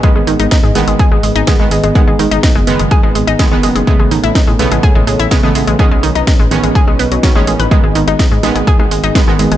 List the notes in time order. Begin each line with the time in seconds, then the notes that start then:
Already playing: D#5
0.03 D#3 G#3 B3 G#4, kick, cross-stick, closed hi-hat
0.16 G#1 G#3
0.27 G#1 D#3, open hi-hat
0.40 G#1 D#4, cross-stick, closed hi-hat
0.51 D#4, kick, snare, closed hi-hat
0.63 G#2 G#3
0.75 A1 D#3 G#3 B3, cross-stick, snare, open hi-hat
0.88 G#1 G#3, closed hi-hat
0.99 G#4, kick, closed hi-hat
1.12 G#1 G#3, cross-stick
1.23 G#1 G#3, open hi-hat
1.35 G#1 D#4, closed hi-hat
1.47 D#3 G#3 B3, kick, cross-stick, snare, closed hi-hat
1.59 G#1 D#3 G#3 B3
1.71 G#1 G#3, open hi-hat
1.84 G#1 G#3, cross-stick, closed hi-hat
1.95 D#3 G#3 B3, kick, closed hi-hat
2.07 G#1 G#3
2.19 G#1 D#3, cross-stick, open hi-hat
2.31 G#1 D#4, closed hi-hat
2.43 D#4, kick, snare, closed hi-hat
2.55 F#1 G#3, cross-stick
2.67 F#1 D#3 G#3 B3, open hi-hat
2.79 F#1 G#3, closed hi-hat
2.91 G#4, kick, cross-stick, closed hi-hat
3.03 G#1 G#3
3.15 G#1 G#3, open hi-hat
3.27 G#1 D#4, cross-stick, closed hi-hat
3.39 D#3 G#3 B3, kick, snare, closed hi-hat
3.51 F#1 D#3 G#3 B3
3.63 F#1 G#3, cross-stick, open hi-hat
3.75 F#1 G#3, closed hi-hat
3.87 C#3 G#3 A3 B3 A4 C#5, kick, closed hi-hat
3.99 A1 G#3, cross-stick
4.11 A1 D#3, open hi-hat
4.23 A1 E4, closed hi-hat
4.35 D#4, kick, cross-stick, snare, closed hi-hat
4.47 A2 G#3
4.59 B1 C#3 G#3 A3 B3, open hi-hat
4.72 A1 G#3, cross-stick, closed hi-hat
4.83 G#4, kick, closed hi-hat
4.95 A1 G#3
5.07 A1 G#3, cross-stick, open hi-hat
5.19 A1 E4, closed hi-hat
5.31 C#3 G#3 A3 B3, kick, snare, closed hi-hat
5.43 A1 C#3 G#3 A3 B3, cross-stick
5.55 A1 G#3, open hi-hat
5.67 A1 G#3, closed hi-hat
5.79 D#3 G#3 B3 C#4 B4 D#5, kick, cross-stick, closed hi-hat
5.91 B1 G#3
6.03 B1 D#3, open hi-hat
6.15 B1 D#4, cross-stick, closed hi-hat
6.27 D#4, kick, snare, closed hi-hat
6.39 A1 G#3
6.51 A1 D#3 G#3 B3 C#4, cross-stick, open hi-hat
6.63 A1 G#3, closed hi-hat
6.75 G#4, kick, closed hi-hat
6.87 B1 G#3, cross-stick
6.99 B1 B3, open hi-hat
7.11 B1 F#3, closed hi-hat
7.23 D#3 F#3 B3 C#4, kick, cross-stick, snare, closed hi-hat
7.35 A1 D#3 G#3 B3 C#4
7.47 A1 G#3, open hi-hat
7.59 A1 B4, cross-stick, closed hi-hat
7.71 D#3 G#3 B3 G#4, kick, cross-stick, closed hi-hat
7.84 G#1 G#3
7.95 G#1 D#3, open hi-hat
8.07 G#1 D#4, cross-stick, closed hi-hat
8.19 D#4, kick, snare, closed hi-hat
8.31 G#2 G#3
8.43 A1 D#3 G#3 B3, cross-stick, snare, open hi-hat
8.55 G#1 G#3, closed hi-hat
8.67 G#4, kick, closed hi-hat
8.79 G#1 G#3, cross-stick
8.91 G#1 G#3, open hi-hat
9.03 G#1 D#4, closed hi-hat
9.15 D#3 G#3 B3, kick, cross-stick, snare, closed hi-hat
9.27 G#1 D#3 G#3 B3
9.39 G#1 G#3, open hi-hat
9.51 G#1 G#3, cross-stick, closed hi-hat